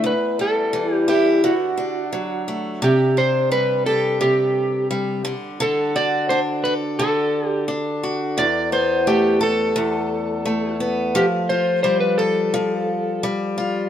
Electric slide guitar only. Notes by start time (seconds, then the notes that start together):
0.06 B4
0.41 A4
0.94 G4
1.09 G4
1.45 F#4
2.84 G4
3.18 C5
3.52 B4
3.86 A4
4.22 G4
5.62 A4
5.96 D5
6.29 C5
6.64 B4
6.99 A4
7.48 G4
8.39 D5
8.73 C5
9.07 G4
9.43 A4
11.16 G4
11.49 C5
11.83 C5
12.00 B4
12.18 A4